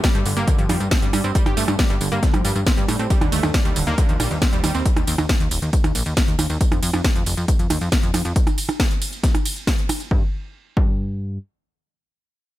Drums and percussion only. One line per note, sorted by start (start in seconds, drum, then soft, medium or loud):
0.04 kick loud
0.04 snare loud
0.04 closed hi-hat medium
0.04 tambourine soft
0.15 closed hi-hat soft
0.15 tambourine soft
0.26 open hi-hat loud
0.26 tambourine medium
0.37 closed hi-hat soft
0.37 tambourine soft
0.48 kick loud
0.48 closed hi-hat medium
0.48 tambourine soft
0.58 closed hi-hat soft
0.58 tambourine soft
0.69 open hi-hat loud
0.69 tambourine medium
0.69 percussion blips medium
0.80 closed hi-hat soft
0.80 tambourine soft
0.91 kick loud
0.91 snare loud
0.91 closed hi-hat medium
0.91 tambourine soft
1.02 closed hi-hat soft
1.02 tambourine soft
1.13 open hi-hat loud
1.13 tambourine medium
1.13 percussion blips medium
1.24 closed hi-hat soft
1.24 tambourine soft
1.35 kick loud
1.35 closed hi-hat medium
1.35 tambourine soft
1.46 closed hi-hat soft
1.46 tambourine soft
1.46 percussion blips medium
1.57 open hi-hat loud
1.57 tambourine medium
1.68 closed hi-hat soft
1.68 tambourine soft
1.68 percussion blips medium
1.79 kick loud
1.79 snare loud
1.79 closed hi-hat medium
1.79 tambourine soft
1.90 closed hi-hat soft
1.90 tambourine soft
2.01 open hi-hat loud
2.01 tambourine medium
2.12 closed hi-hat soft
2.12 tambourine soft
2.23 kick loud
2.23 snare soft
2.23 closed hi-hat medium
2.23 tambourine soft
2.34 closed hi-hat soft
2.34 tambourine soft
2.34 percussion blips medium
2.45 open hi-hat loud
2.45 tambourine medium
2.56 closed hi-hat soft
2.56 tambourine soft
2.67 kick loud
2.67 snare loud
2.67 closed hi-hat medium
2.67 tambourine soft
2.77 closed hi-hat soft
2.77 tambourine soft
2.88 open hi-hat loud
2.88 tambourine medium
2.88 percussion blips medium
2.99 closed hi-hat soft
2.99 tambourine soft
3.10 kick loud
3.10 closed hi-hat medium
3.10 ride medium
3.10 tambourine soft
3.21 closed hi-hat soft
3.21 tambourine soft
3.21 percussion blips medium
3.32 open hi-hat loud
3.32 ride medium
3.32 tambourine medium
3.43 closed hi-hat soft
3.43 tambourine soft
3.43 percussion blips medium
3.54 kick loud
3.54 snare loud
3.54 closed hi-hat medium
3.54 ride medium
3.54 tambourine soft
3.65 closed hi-hat soft
3.65 tambourine soft
3.76 open hi-hat loud
3.76 ride medium
3.76 tambourine medium
3.87 closed hi-hat soft
3.87 tambourine soft
3.98 kick loud
3.98 closed hi-hat medium
3.98 ride medium
3.98 tambourine soft
4.09 closed hi-hat soft
4.09 tambourine soft
4.20 open hi-hat loud
4.20 ride medium
4.20 tambourine medium
4.20 percussion blips medium
4.31 closed hi-hat soft
4.31 tambourine soft
4.42 kick loud
4.42 snare loud
4.42 closed hi-hat medium
4.42 ride medium
4.42 tambourine soft
4.53 closed hi-hat soft
4.53 tambourine soft
4.64 open hi-hat loud
4.64 ride medium
4.64 tambourine medium
4.64 percussion blips medium
4.75 closed hi-hat soft
4.75 tambourine soft
4.86 kick loud
4.86 closed hi-hat medium
4.86 ride medium
4.86 tambourine soft
4.96 closed hi-hat soft
4.96 tambourine soft
4.96 percussion blips medium
5.07 open hi-hat loud
5.07 ride medium
5.07 tambourine medium
5.18 closed hi-hat soft
5.18 tambourine soft
5.18 percussion blips medium
5.29 kick loud
5.29 snare loud
5.29 closed hi-hat medium
5.29 ride medium
5.29 tambourine soft
5.40 closed hi-hat soft
5.40 tambourine soft
5.51 open hi-hat loud
5.51 ride medium
5.51 tambourine medium
5.62 closed hi-hat soft
5.62 tambourine soft
5.73 kick loud
5.73 closed hi-hat medium
5.73 ride medium
5.73 tambourine soft
5.84 closed hi-hat soft
5.84 tambourine soft
5.84 percussion blips medium
5.95 open hi-hat loud
5.95 ride medium
5.95 tambourine medium
6.06 closed hi-hat soft
6.06 tambourine soft
6.17 kick loud
6.17 snare loud
6.17 closed hi-hat medium
6.17 ride medium
6.17 tambourine soft
6.28 closed hi-hat soft
6.28 tambourine soft
6.39 open hi-hat loud
6.39 ride medium
6.39 tambourine medium
6.39 percussion blips medium
6.50 closed hi-hat soft
6.50 tambourine soft
6.61 kick loud
6.61 closed hi-hat loud
6.61 ride medium
6.61 tambourine soft
6.72 closed hi-hat soft
6.72 tambourine soft
6.72 percussion blips medium
6.83 open hi-hat loud
6.83 ride medium
6.83 tambourine medium
6.94 closed hi-hat soft
6.94 tambourine soft
6.94 percussion blips medium
7.04 kick loud
7.04 snare loud
7.04 closed hi-hat loud
7.04 ride medium
7.04 tambourine soft
7.15 closed hi-hat soft
7.15 tambourine soft
7.26 open hi-hat loud
7.26 ride medium
7.26 tambourine medium
7.37 closed hi-hat soft
7.37 tambourine soft
7.48 kick loud
7.48 closed hi-hat loud
7.48 ride medium
7.48 tambourine soft
7.59 closed hi-hat soft
7.59 tambourine soft
7.70 open hi-hat loud
7.70 ride medium
7.70 tambourine medium
7.70 percussion blips medium
7.81 closed hi-hat soft
7.81 tambourine soft
7.92 kick loud
7.92 snare loud
7.92 closed hi-hat loud
7.92 ride medium
7.92 tambourine soft
8.03 closed hi-hat soft
8.03 tambourine soft
8.14 open hi-hat loud
8.14 ride medium
8.14 tambourine medium
8.14 percussion blips medium
8.25 closed hi-hat soft
8.25 tambourine soft
8.36 kick loud
8.36 closed hi-hat loud
8.36 ride medium
8.36 tambourine soft
8.47 closed hi-hat soft
8.47 tambourine soft
8.47 percussion blips medium
8.58 open hi-hat loud
8.58 ride medium
8.58 tambourine medium
8.69 closed hi-hat soft
8.69 tambourine soft
8.69 percussion blips medium
8.80 kick loud
8.80 snare loud
8.80 closed hi-hat loud
8.80 ride medium
8.80 tambourine soft
8.91 closed hi-hat soft
8.91 tambourine soft
9.02 open hi-hat loud
9.02 ride medium
9.02 tambourine medium
9.13 closed hi-hat soft
9.13 tambourine soft
9.24 kick loud
9.24 snare soft
9.24 closed hi-hat loud
9.24 ride medium
9.24 tambourine soft
9.35 closed hi-hat soft
9.35 tambourine soft
9.35 percussion blips medium
9.45 open hi-hat loud
9.45 ride medium
9.45 tambourine medium
9.56 closed hi-hat soft
9.56 tambourine soft
9.67 kick loud
9.67 snare loud
9.67 closed hi-hat loud
9.67 ride medium
9.67 tambourine soft
9.78 closed hi-hat soft
9.78 tambourine soft
9.89 open hi-hat loud
9.89 ride medium
9.89 tambourine medium
9.89 percussion blips medium
10.00 closed hi-hat soft
10.00 tambourine soft
10.11 kick loud
10.77 kick loud